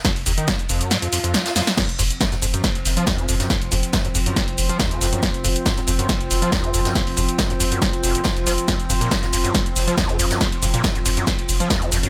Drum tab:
CC |----------------|x---------------|----------------|----------------|
RD |x-x-xxx-x-x-xxxx|--x-x-x-x-x-x-x-|x-x-xxx-x-x-xxx-|x-x-x-x-x-x-x-x-|
HH |xooxxxoxxxoxxxox|xxoxxxoxxxoxxxox|xxoxxxoxxxoxxxox|xxoxxxoxxxoxxxox|
SH |xxxxxxxxxxxxxxxx|xxxxxxxxxxxxxxxx|xxxxxxxxxxxxxxxx|xxxxxxxxxxxxxxxx|
SD |o---o---o---oooo|o---oo--o-o-o--o|o---o---o---o-o-|o---oo--o-o-o--o|
BD |o---o-----------|o---o---o---o---|o---o---o---o---|o---o---o---o---|

CC |----------------|----------------|----------------|
RD |x-x-xxx-x-x-xxx-|x-x-x-x-x-x-x-x-|x-x-xxx-x-x-xxx-|
HH |xooxxxoxxxoxxxox|xxoxxxoxxxoxxxox|xxoxxxoxxxoxxxox|
SH |xxxxxxxxxxxxxxxx|xxxxxxxxxxxxxxxx|xxxxxxxxxxxxxxxx|
SD |o---o---o---o-o-|o---oo--o-o-o--o|o---o---o---o-o-|
BD |o---o---o---o---|o---o---o---o---|o---o---o---o---|